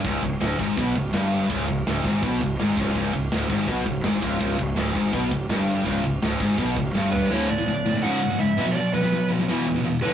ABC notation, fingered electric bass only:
X:1
M:4/4
L:1/8
Q:1/4=166
K:C#phr
V:1 name="Fingered electric bass" clef=bass
C,,, C,,, D,,, G,,, B,,, C,,, =G,,,2 | C,,, C,,, D,,, G,,, B,,, C,,, G,,, C,,, | C,,, C,,, D,,, G,,, B,,, C,,, G,,, C,,, | C,,, C,,, D,,, G,,, B,,, C,,, =G,,,2 |
C,,, C,,, D,,, G,,, B,,, C,,, =G,,,2 | z8 | z8 |]